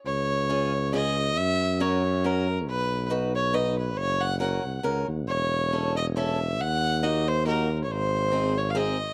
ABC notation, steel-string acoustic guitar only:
X:1
M:3/4
L:1/8
Q:"Swing" 1/4=138
K:Gblyd
V:1 name="Steel-string acoustic guitar"
z2 [DFA] z [DFA] z | z2 [DGB] z [DGB] z | z2 [EG_c] z [EGc] z | z2 [DGB] z [DGB] z |
z2 [^C=E=A] z [CEA] z | z2 [B,EG] z [B,EG] z | z2 [CEA] z [CEA] z |]